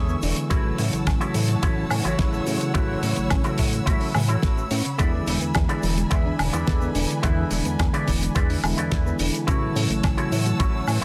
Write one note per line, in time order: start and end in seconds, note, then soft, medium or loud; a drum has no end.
0.00 0.16 E2 medium
0.00 0.47 D3 medium
0.00 0.47 E3 medium
0.00 0.47 G#3 medium
0.00 0.48 B3 medium
0.00 0.15 D4 medium
0.00 0.47 D4 medium
0.00 0.16 E4 medium
0.00 0.48 E4 loud
0.00 0.16 G#4 medium
0.00 0.16 C#5 loud
0.00 0.46 G#5 medium
0.00 0.48 C#6 medium
0.00 0.47 E6 medium
0.08 0.20 B3 medium
0.08 shaker soft
0.22 0.34 E1 medium
0.22 0.34 D4 loud
0.22 open hi-hat loud
0.22 shaker medium
0.36 0.45 D3 medium
0.36 closed hi-hat medium
0.36 shaker medium
0.49 0.72 A1 loud
0.49 2.15 C#3 medium
0.49 2.15 E3 medium
0.49 2.15 F#3 medium
0.49 2.16 A3 medium
0.49 0.78 E4 loud
0.49 2.16 E4 loud
0.49 0.78 F#4 loud
0.49 0.79 A4 loud
0.49 4.95 C#5 medium
0.49 0.79 C#5 loud
0.49 4.95 F#5 medium
0.49 2.73 A5 medium
0.49 7.20 E6 medium
0.49 kick loud
0.49 closed hi-hat medium
0.49 shaker medium
0.65 0.72 E3 loud
0.78 0.90 A2 medium
0.78 0.91 C#4 medium
0.78 open hi-hat loud
0.78 shaker medium
0.93 1.04 A1 soft
0.93 1.05 A3 loud
0.93 closed hi-hat medium
0.93 shaker soft
1.06 1.18 A1 loud
1.06 1.19 C#4 medium
1.06 muted clean electric guitar stroke soft
1.06 kick loud
1.06 snare loud
1.06 closed hi-hat medium
1.06 high woodblock medium
1.06 shaker medium
1.20 1.29 C#3 loud
1.20 1.34 E4 medium
1.20 1.35 F#4 medium
1.20 1.35 A4 medium
1.20 1.35 C#5 medium
1.20 closed hi-hat medium
1.34 1.56 A2 medium
1.34 1.47 E3 loud
1.34 open hi-hat loud
1.34 shaker medium
1.48 1.54 F#3 medium
1.48 muted clean electric guitar stroke soft
1.48 closed hi-hat medium
1.48 shaker soft
1.62 1.85 A1 medium
1.62 1.68 A3 medium
1.62 1.84 E4 medium
1.62 1.84 F#4 medium
1.62 1.84 A4 medium
1.62 1.84 C#5 loud
1.62 kick loud
1.62 closed hi-hat medium
1.62 shaker medium
1.77 1.85 C#4 medium
1.90 2.02 A2 medium
1.90 1.99 C#3 medium
1.90 open hi-hat loud
1.90 high woodblock medium
1.90 shaker medium
2.04 2.16 A1 soft
2.04 2.17 E3 loud
2.04 2.40 E4 medium
2.04 2.40 F#4 medium
2.04 2.40 A4 medium
2.04 2.40 C#5 loud
2.04 closed hi-hat medium
2.04 shaker medium
2.18 2.40 A1 medium
2.18 2.71 C#3 medium
2.18 2.71 E3 medium
2.18 2.71 F#3 medium
2.18 2.72 A3 medium
2.18 2.72 E4 loud
2.18 kick loud
2.18 snare loud
2.18 closed hi-hat medium
2.18 shaker medium
2.33 2.44 A3 loud
2.33 shaker soft
2.47 2.58 A2 medium
2.47 2.59 C#4 loud
2.47 open hi-hat loud
2.47 shaker medium
2.61 2.69 C#3 medium
2.61 closed hi-hat medium
2.61 shaker medium
2.74 2.97 A1 loud
2.74 4.11 C#3 medium
2.74 2.83 C#3 loud
2.74 4.12 E3 medium
2.74 4.12 F#3 medium
2.74 4.12 A3 medium
2.74 3.02 E4 loud
2.74 4.12 E4 medium
2.74 3.03 F#4 loud
2.74 3.03 A4 medium
2.74 3.03 B4 loud
2.74 9.44 B5 medium
2.74 kick loud
2.74 closed hi-hat medium
2.74 shaker medium
2.89 2.97 E3 loud
3.03 3.14 A2 medium
3.03 3.15 C#4 medium
3.03 open hi-hat loud
3.03 shaker medium
3.16 3.28 A1 soft
3.16 3.29 A3 loud
3.16 closed hi-hat medium
3.16 shaker soft
3.30 3.42 A1 medium
3.30 3.43 C#4 medium
3.30 muted clean electric guitar stroke soft
3.30 kick loud
3.30 snare loud
3.30 closed hi-hat medium
3.30 high woodblock medium
3.30 shaker medium
3.44 3.53 C#3 loud
3.44 3.58 E4 medium
3.44 3.59 F#4 medium
3.44 3.59 A4 medium
3.44 3.59 B4 medium
3.44 closed hi-hat medium
3.44 shaker soft
3.58 3.81 A2 medium
3.58 3.71 E3 loud
3.58 kick medium
3.58 open hi-hat loud
3.58 shaker medium
3.72 3.78 F#3 medium
3.72 muted clean electric guitar stroke soft
3.72 closed hi-hat medium
3.72 shaker medium
3.86 3.98 A1 medium
3.86 3.92 A3 medium
3.86 4.07 E4 medium
3.86 4.08 F#4 medium
3.86 4.08 A4 medium
3.86 4.08 E5 medium
3.86 kick loud
3.86 closed hi-hat medium
3.86 shaker medium
4.01 4.09 C#4 medium
4.01 open hi-hat medium
4.14 4.37 A2 medium
4.14 4.23 C#3 medium
4.14 4.23 E3 medium
4.14 4.23 F#3 medium
4.14 4.23 A3 medium
4.14 4.24 E4 medium
4.14 snare medium
4.14 open hi-hat loud
4.14 high woodblock medium
4.14 shaker medium
4.28 4.41 E3 loud
4.28 4.64 E4 medium
4.28 4.64 F#4 medium
4.28 4.64 A4 medium
4.28 4.64 B4 medium
4.28 closed hi-hat medium
4.28 shaker medium
4.42 4.65 A1 medium
4.42 4.55 F#3 medium
4.42 kick loud
4.42 snare loud
4.42 closed hi-hat medium
4.42 shaker medium
4.58 4.69 A3 loud
4.58 shaker soft
4.71 4.82 A2 medium
4.71 4.83 C#4 loud
4.71 open hi-hat loud
4.71 shaker medium
4.85 4.93 C#3 medium
4.85 closed hi-hat medium
4.85 shaker medium
4.98 5.21 E2 loud
4.98 6.63 D3 medium
4.98 5.07 D3 loud
4.98 6.64 E3 medium
4.98 6.64 G#3 medium
4.98 6.64 B3 medium
4.98 9.44 D4 medium
4.98 5.27 E4 loud
4.98 6.64 E4 loud
4.98 5.27 G#4 loud
4.98 5.27 B4 medium
4.98 5.27 D5 loud
4.98 9.44 G#5 medium
4.98 kick loud
4.98 closed hi-hat medium
4.98 shaker medium
5.14 5.21 E3 loud
5.27 5.38 E1 medium
5.27 5.39 D4 medium
5.27 open hi-hat loud
5.27 shaker medium
5.41 5.53 B3 loud
5.41 closed hi-hat medium
5.41 shaker medium
5.54 5.66 E2 loud
5.54 5.67 D4 medium
5.54 muted clean electric guitar stroke soft
5.54 kick loud
5.54 snare loud
5.54 closed hi-hat medium
5.54 high woodblock medium
5.54 shaker medium
5.69 5.77 D3 loud
5.69 5.83 E4 medium
5.69 5.83 G#4 medium
5.69 5.83 B4 medium
5.69 5.83 D5 medium
5.69 closed hi-hat medium
5.83 6.05 E1 medium
5.83 5.95 E3 loud
5.83 open hi-hat loud
5.83 shaker medium
5.97 6.02 G#3 medium
5.97 muted clean electric guitar stroke soft
5.97 closed hi-hat medium
5.97 shaker soft
6.10 6.33 E2 medium
6.10 6.16 B3 medium
6.10 6.32 E4 medium
6.10 6.32 G#4 medium
6.10 6.32 B4 medium
6.10 6.33 E5 medium
6.10 kick loud
6.10 closed hi-hat medium
6.10 shaker medium
6.26 6.33 D4 medium
6.39 6.50 E1 medium
6.39 6.47 D3 medium
6.39 open hi-hat loud
6.39 high woodblock medium
6.39 shaker medium
6.53 6.65 E2 soft
6.53 6.65 E3 loud
6.53 6.88 E4 medium
6.53 6.88 G#4 medium
6.53 6.88 B4 medium
6.53 6.89 D5 medium
6.53 closed hi-hat medium
6.53 shaker medium
6.67 6.89 E2 medium
6.67 7.20 D3 medium
6.67 7.20 E3 medium
6.67 6.79 G#3 medium
6.67 7.20 G#3 medium
6.67 7.20 B3 medium
6.67 7.20 E4 loud
6.67 kick loud
6.67 snare loud
6.67 closed hi-hat medium
6.67 shaker medium
6.81 6.93 B3 medium
6.81 shaker soft
6.95 7.06 E1 medium
6.95 7.07 D4 loud
6.95 open hi-hat loud
6.95 shaker medium
7.10 7.17 D3 medium
7.10 closed hi-hat medium
7.10 shaker soft
7.22 7.45 E2 loud
7.22 8.60 D3 medium
7.22 7.31 D3 loud
7.22 8.60 E3 medium
7.22 8.60 G#3 medium
7.22 8.60 B3 medium
7.22 7.51 E4 loud
7.22 8.61 E4 medium
7.22 7.51 G#4 loud
7.22 7.51 B4 loud
7.22 7.52 E5 loud
7.22 kick loud
7.22 closed hi-hat medium
7.22 shaker medium
7.38 7.45 E3 loud
7.51 7.62 E1 medium
7.51 7.63 D4 medium
7.51 open hi-hat loud
7.51 shaker medium
7.65 7.77 E2 soft
7.65 7.77 B3 loud
7.65 closed hi-hat medium
7.65 shaker medium
7.79 7.90 E2 loud
7.79 7.92 D4 medium
7.79 muted clean electric guitar stroke soft
7.79 kick loud
7.79 snare loud
7.79 closed hi-hat medium
7.79 high woodblock medium
7.79 shaker medium
7.93 8.01 D3 loud
7.93 8.07 E4 medium
7.93 8.08 G#4 medium
7.93 8.08 B4 medium
7.93 8.08 D5 medium
7.93 closed hi-hat medium
8.07 8.29 E1 medium
8.07 8.19 E3 loud
8.07 kick medium
8.07 open hi-hat loud
8.07 shaker loud
8.21 8.26 G#3 medium
8.21 muted clean electric guitar stroke soft
8.21 closed hi-hat medium
8.21 shaker medium
8.35 8.57 E2 medium
8.35 8.40 B3 medium
8.35 8.56 E4 medium
8.35 8.57 G#4 medium
8.35 8.57 B4 medium
8.35 8.57 D5 medium
8.35 kick loud
8.35 closed hi-hat medium
8.35 shaker medium
8.50 8.58 D4 medium
8.50 open hi-hat medium
8.63 8.74 E1 medium
8.63 9.44 D3 medium
8.63 8.72 D3 medium
8.63 9.44 E3 medium
8.63 9.45 G#3 medium
8.63 9.45 B3 medium
8.63 9.45 E4 loud
8.63 open hi-hat loud
8.63 high woodblock medium
8.63 shaker medium
8.77 8.90 E3 loud
8.77 9.12 E4 medium
8.77 9.13 G#4 medium
8.77 9.13 B4 medium
8.77 9.13 D5 loud
8.77 closed hi-hat medium
8.77 shaker medium
8.92 9.13 E2 medium
8.92 9.04 G#3 medium
8.92 kick loud
8.92 snare loud
8.92 closed hi-hat medium
8.92 shaker medium
9.06 9.18 B3 loud
9.06 shaker medium
9.19 9.30 E1 medium
9.19 9.32 D4 loud
9.19 open hi-hat loud
9.19 shaker medium
9.34 9.42 D3 medium
9.34 closed hi-hat medium
9.34 shaker medium
9.47 9.69 A1 loud
9.47 11.04 C#3 medium
9.47 9.56 C#3 loud
9.47 11.04 E3 medium
9.47 11.04 F#3 medium
9.47 11.04 A3 medium
9.47 9.75 E4 loud
9.47 11.04 E4 loud
9.47 9.76 F#4 loud
9.47 9.76 A4 loud
9.47 11.04 C#5 medium
9.47 9.76 C#5 loud
9.47 11.04 F#5 medium
9.47 11.04 A5 medium
9.47 11.04 E6 medium
9.47 kick loud
9.47 closed hi-hat medium
9.47 shaker medium
9.62 9.70 E3 medium
9.76 9.87 A2 medium
9.76 9.88 C#4 medium
9.76 open hi-hat loud
9.76 shaker medium
9.90 10.01 A1 soft
9.90 10.02 A3 loud
9.90 closed hi-hat medium
9.90 shaker soft
10.03 10.15 A1 loud
10.03 10.16 C#4 medium
10.03 muted clean electric guitar stroke soft
10.03 kick loud
10.03 snare loud
10.03 closed hi-hat medium
10.03 high woodblock medium
10.03 shaker medium
10.17 10.26 C#3 loud
10.17 10.31 E4 medium
10.17 10.32 F#4 medium
10.17 10.32 A4 medium
10.17 10.32 C#5 medium
10.17 closed hi-hat medium
10.32 10.53 A2 medium
10.32 10.44 E3 loud
10.32 open hi-hat loud
10.32 shaker medium
10.45 10.51 F#3 medium
10.45 muted clean electric guitar stroke soft
10.45 closed hi-hat medium
10.45 shaker medium
10.59 10.81 A1 medium
10.59 10.65 A3 medium
10.59 10.81 E4 medium
10.59 10.81 F#4 medium
10.59 10.81 A4 medium
10.59 10.81 C#5 loud
10.59 kick loud
10.59 closed hi-hat medium
10.59 shaker medium
10.74 10.82 C#4 medium
10.88 10.99 A2 medium
10.88 10.96 C#3 medium
10.88 open hi-hat loud
10.88 high woodblock medium
10.88 shaker loud
11.01 11.04 E4 medium